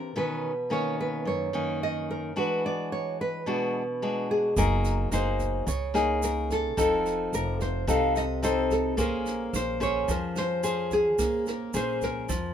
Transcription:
0.00 0.13 C3 soft
0.00 0.17 A#4 medium
0.16 1.23 B2 soft
0.16 0.51 D#3 medium
0.16 0.51 C#4 medium
0.16 0.72 B4 medium
0.70 1.49 D#3 soft
0.70 1.49 A#3 soft
0.70 1.49 C#4 medium
0.70 1.00 C#5 medium
1.01 1.27 B4 medium
1.25 2.33 F#2 medium
1.25 1.83 C#5 medium
1.53 2.32 D#3 medium
1.53 2.32 A#3 medium
1.53 2.32 C#4 medium
1.83 2.08 D#5 medium
2.11 2.38 A#4 medium
2.36 3.43 E3 soft
2.36 3.42 G#3 medium
2.36 3.42 D4 medium
2.36 3.42 F#4 medium
2.36 2.63 B4 medium
2.66 2.92 D5 medium
2.92 3.20 C#5 medium
3.21 4.26 B4 medium
3.46 4.54 B2 medium
3.46 3.82 G#3 soft
3.46 3.82 D4 medium
3.46 3.82 F#4 medium
4.02 4.55 G#3 medium
4.02 4.55 D4 medium
4.02 4.55 F#4 medium
4.31 4.58 G#4 medium
4.57 5.08 F#1 loud
4.57 5.65 F#3 medium
4.57 5.08 A#3 medium
4.57 5.08 D#4 medium
4.57 5.08 G#4 medium
4.57 5.09 A#4 medium
4.57 kick medium
4.57 snare soft
4.57 shaker medium
4.84 snare soft
4.84 shaker soft
5.12 5.63 F#1 medium
5.12 5.67 A#3 soft
5.12 5.67 D#4 soft
5.12 5.67 G#4 medium
5.12 5.64 C5 medium
5.12 cross-stick medium
5.12 snare soft
5.12 shaker medium
5.39 kick soft
5.39 snare soft
5.39 shaker soft
5.67 6.78 C#2 medium
5.67 6.74 C#3 medium
5.67 6.24 C#5 medium
5.67 kick medium
5.67 snare soft
5.67 shaker medium
5.94 6.73 A#3 medium
5.94 6.73 D#4 medium
5.94 6.73 G#4 medium
5.94 cross-stick medium
5.94 snare soft
5.94 shaker soft
6.22 6.52 A#4 medium
6.22 snare soft
6.22 shaker medium
6.50 7.34 A4 medium
6.50 kick soft
6.50 snare soft
6.50 shaker soft
6.77 7.29 F1 loud
6.77 7.85 F3 medium
6.77 7.83 C4 medium
6.77 7.83 D#4 medium
6.77 7.84 A4 medium
6.77 kick medium
6.77 cross-stick medium
6.77 snare soft
6.77 shaker medium
7.06 snare soft
7.06 shaker soft
7.33 7.84 F1 medium
7.33 7.61 A#4 medium
7.33 snare soft
7.33 shaker medium
7.60 7.87 C5 medium
7.60 kick soft
7.60 snare soft
7.60 shaker soft
7.87 8.98 C2 medium
7.87 8.95 C3 medium
7.87 8.23 C4 medium
7.87 8.23 D#4 medium
7.87 8.24 A4 medium
7.87 8.17 F5 medium
7.87 kick medium
7.87 cross-stick medium
7.87 snare soft
7.87 shaker medium
8.16 8.44 D#5 medium
8.16 snare soft
8.16 shaker soft
8.43 8.96 C4 medium
8.43 8.96 D#4 medium
8.43 8.96 A4 medium
8.43 8.72 C5 medium
8.43 cross-stick medium
8.43 snare soft
8.43 shaker medium
8.71 9.00 A4 medium
8.71 kick soft
8.71 snare soft
8.71 shaker soft
8.97 9.50 A#1 loud
8.97 10.05 A#3 medium
8.97 9.76 C#4 medium
8.97 9.76 G#4 medium
8.97 9.56 A#4 medium
8.97 9.77 C5 medium
8.97 kick medium
8.97 snare soft
8.97 shaker medium
9.26 snare soft
9.26 shaker soft
9.53 10.05 A#1 medium
9.53 9.82 C5 medium
9.53 cross-stick medium
9.53 snare soft
9.53 shaker medium
9.80 10.59 C#4 medium
9.80 10.59 G#4 medium
9.80 10.59 C5 medium
9.80 10.10 C#5 medium
9.80 kick soft
9.80 snare soft
9.80 shaker soft
10.08 11.19 F2 medium
10.08 11.16 F3 medium
10.08 10.38 A#4 medium
10.08 kick medium
10.08 snare soft
10.08 shaker medium
10.36 10.94 C5 medium
10.36 cross-stick medium
10.36 snare soft
10.36 shaker soft
10.63 11.70 C#4 medium
10.63 11.70 G#4 medium
10.63 11.70 C5 medium
10.63 snare soft
10.63 shaker medium
10.91 11.48 G#4 medium
10.91 kick soft
10.91 snare soft
10.91 shaker soft
11.19 11.70 A#1 medium
11.19 12.27 A#3 medium
11.19 kick medium
11.19 cross-stick medium
11.19 snare soft
11.19 shaker medium
11.46 11.76 A#4 medium
11.46 snare soft
11.46 shaker soft
11.73 12.25 A#1 medium
11.73 12.29 C#4 soft
11.73 12.29 G#4 medium
11.73 12.29 C5 soft
11.73 12.04 C5 medium
11.73 snare soft
11.73 shaker medium
12.01 12.54 A#4 medium
12.01 kick soft
12.01 snare soft
12.01 shaker soft
12.29 12.54 F2 medium
12.29 12.54 F3 medium
12.29 kick medium
12.29 cross-stick medium
12.29 snare soft
12.29 shaker medium

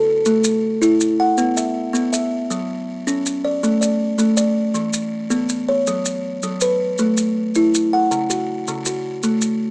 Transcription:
0.00 0.45 A4 medium
0.26 0.63 A3 medium
0.26 maracas medium
0.44 maracas medium
0.82 1.19 E4 medium
0.82 maracas medium
1.01 maracas medium
1.20 1.57 F#5 medium
1.38 1.75 B3 medium
1.38 maracas medium
1.57 2.12 E5 medium
1.57 maracas medium
1.93 2.31 B3 medium
1.93 maracas medium
2.13 2.69 E5 medium
2.13 maracas medium
2.51 2.88 F#3 medium
2.51 maracas medium
3.07 3.44 C#4 medium
3.07 maracas medium
3.26 maracas medium
3.45 3.80 D5 medium
3.63 4.00 A3 medium
3.63 maracas medium
3.81 4.36 D5 medium
3.81 maracas medium
4.18 4.56 A3 medium
4.18 maracas medium
4.37 4.93 D5 medium
4.37 maracas medium
4.74 5.12 E3 medium
4.74 maracas medium
4.93 maracas medium
5.30 5.68 B3 medium
5.30 maracas medium
5.49 maracas medium
5.69 6.06 C#5 medium
5.87 6.25 F#3 medium
5.87 maracas medium
6.05 maracas medium
6.43 6.81 F#3 medium
6.43 maracas medium
6.61 7.18 B4 medium
6.61 maracas medium
6.98 7.37 A3 medium
6.98 maracas medium
7.17 maracas medium
7.55 7.93 E4 medium
7.55 maracas medium
7.75 maracas medium
7.93 8.30 F#5 medium
8.11 8.49 C#3 medium
8.11 maracas medium
8.30 8.85 F#4 medium
8.30 maracas medium
8.68 9.05 C#3 medium
8.68 maracas medium
8.86 9.42 F#4 medium
8.86 maracas medium
9.23 9.61 A3 medium
9.23 maracas medium
9.41 maracas medium

